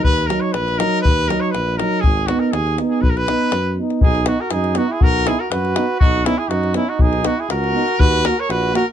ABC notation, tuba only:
X:1
M:2/4
L:1/8
Q:"Swing 16ths" 1/4=121
K:B
V:1 name="Tuba" clef=bass
D,,2 A,,,2 | D,,2 A,,,2 | G,,,2 D,,2 | B,,,2 F,,2 |
B,,,2 F,,2 | B,,,2 F,,2 | B,,,2 F,,2 | B,,,2 C,,2 |
D,,2 A,,,2 |]